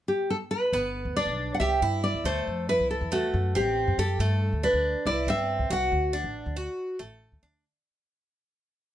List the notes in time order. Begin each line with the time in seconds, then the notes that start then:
0.08 G4
0.30 A4
0.51 B4
0.73 G1 B3
1.05 D2
1.17 D4 D5
1.27 B1
1.54 F#5
1.60 C2 G4 E5
1.82 G2 E4
2.04 D5
2.14 C2
2.24 D2 A3 C5
2.47 F2
2.69 E4 B4
2.80 C2
2.90 A4
3.01 E2
3.12 A3 F#4
3.34 F#2
3.55 A1 C4 G4
3.88 F#2
3.98 F#2 G4 A4
4.19 G2 A3
4.53 D2
4.63 D4 B4
4.73 D2
5.06 C2 E4 D5
5.27 G2 C4 E5
5.59 C2
5.70 C2 F#4 F#5
5.92 D2
6.13 D4
6.24 A1
6.46 D2
6.57 F#4
6.99 A1 A3
7.32 D2
7.43 D2 D4